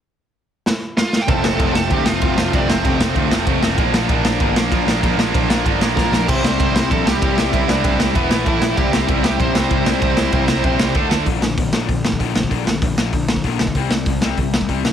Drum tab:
CC |----------------|----------------|----------------|----------------|
RD |----------------|x---x---x---x---|x---x---x---x---|x---x---x---x---|
HH |----------------|----------------|----------------|----------------|
SD |--------o---o-o-|--o---o---o---o-|--o---o---o---o-|--o---o---o---o-|
BD |----------------|o---o---o---o---|o---o---o---o---|o---o---o---o---|

CC |----------------|x---------------|----------------|----------------|
RD |x---x---x-------|----x---x---x---|x---x---x---x---|x---x---x---x---|
HH |----------------|----------------|----------------|----------------|
SD |--o---o---o-o-o-|--o---o---o---o-|--o---o---o---o-|--o---o---o---o-|
BD |o---o---o---o---|o---o---o---o---|o---o---o---o---|o---o---o---o---|

CC |----------------|----------------|----------------|----------------|
RD |x---x---x---x---|----------------|----------------|----------------|
HH |----------------|o---o---o---o---|o---o---o---o---|o---o---o---o---|
SD |--o---o---o---o-|--o---o---o---o-|--o---o---o---o-|--o---o---o---o-|
BD |o---o---o---o---|o---o---o--oo--o|o---o---o--oo--o|o---o---o--oo---|